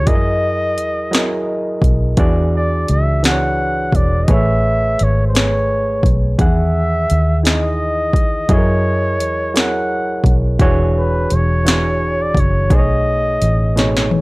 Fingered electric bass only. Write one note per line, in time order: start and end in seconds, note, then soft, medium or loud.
0.08 0.79 F#2 loud
0.79 1.80 E2 medium
1.83 2.14 B1 medium
2.18 2.84 E2 loud
2.90 3.90 C#2 medium
3.94 4.25 E1 medium
4.29 4.95 A1 loud
5.01 6.01 G#1 loud
6.04 6.35 B1 medium
6.40 7.05 E2 loud
7.11 8.15 D#2 loud
8.15 8.46 C#2 medium
8.50 9.21 F#2 loud
9.21 10.21 E2 medium
10.25 10.57 B1 medium
10.60 11.26 E1 loud
11.32 12.32 E1 medium
12.36 12.71 F#1 loud
12.71 13.37 B1 loud
13.42 14.21 A1 loud